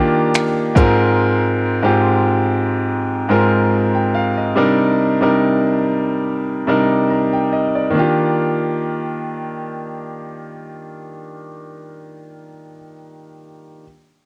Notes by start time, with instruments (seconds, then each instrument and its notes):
Already playing: grand piano D#3 A#3 D4 F4 G4
0.34 finger snap, closed hi-hat
0.75 grand piano G#2 G#3 C4 F4 A#4, kick, closed hi-hat
1.83 grand piano G#2 G#3 C4 F4 G4
3.29 grand piano G#2 G#3 C4 F4 A#4
3.95 grand piano G5
4.14 grand piano F5
4.37 grand piano D#5
4.56 grand piano C3 G3 D4 D#4 A#4
5.21 grand piano C3 G3 D4 D#4 A#4
6.67 grand piano C3 G3 D4 D#4 A#4
7.10 grand piano A#5
7.33 grand piano G5
7.53 grand piano D#5
7.75 grand piano D5
7.90 grand piano D#3 A#3
7.95 grand piano D4 F4
7.99 grand piano G4